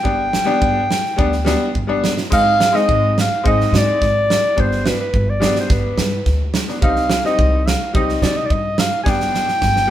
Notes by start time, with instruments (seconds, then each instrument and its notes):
Already playing: clarinet G5
0.03 upright bass G1, upright piano G3 B3 D4, kick
0.33 snare
0.45 upright piano G3 B3 D4
0.62 upright bass G1, kick
0.91 snare
1.05 snare
1.17 upright bass D2, upright piano G3 B3 D4, kick
1.32 snare
1.45 upright piano G3 B3 D4, snare
1.75 upright bass G1, kick
1.87 upright piano G3 B3 D4
2.04 snare
2.17 snare
2.30 upright bass G#1, upright piano G#3 C4 D#4, clarinet F5, kick, snare, crash
2.60 snare
2.73 upright piano G#3 C4 D#4, clarinet D#5, snare
2.88 upright bass G#1, kick
3.18 clarinet F5, snare
3.44 upright bass G#1, upright piano G#3 C4 D#4, kick
3.48 clarinet D#5
3.61 snare
3.72 upright bass G#2, snare
3.77 clarinet D5
4.01 upright bass G#1, kick, snare
4.30 snare
4.55 upright bass G1, upright piano G3 B3 D4, kick
4.60 clarinet C5
4.72 snare
4.86 clarinet B4, snare
5.00 clarinet B4
5.14 upright bass G1, kick
5.30 clarinet D5
5.40 upright piano G3 B3 D4, snare
5.55 snare
5.60 clarinet C5
5.69 upright bass G1, clarinet B4, kick, snare
5.97 upright bass G2, snare
6.26 upright bass D2, kick, snare
6.54 snare
6.68 upright piano B3 D4, snare
6.81 upright bass C2, upright piano G3 C4 D#4, clarinet F5, kick
6.96 snare
7.09 snare
7.24 upright piano G3 C4 D#4, clarinet D#5, snare
7.39 upright bass C2, kick
7.67 clarinet F5, snare
7.93 upright bass C2, upright piano G3 C4 D#4, clarinet D#5, kick
8.09 snare
8.22 upright bass C3, clarinet D5, snare
8.37 clarinet D#5
8.46 clarinet D5
8.50 upright bass G2, clarinet D#5, kick
8.78 clarinet F5, snare
9.03 upright bass G1, upright piano G3 B3 D4, clarinet G#5, kick, snare
9.09 clarinet G5
9.20 snare
9.34 snare
9.48 snare
9.61 upright bass G1, kick, snare
9.76 snare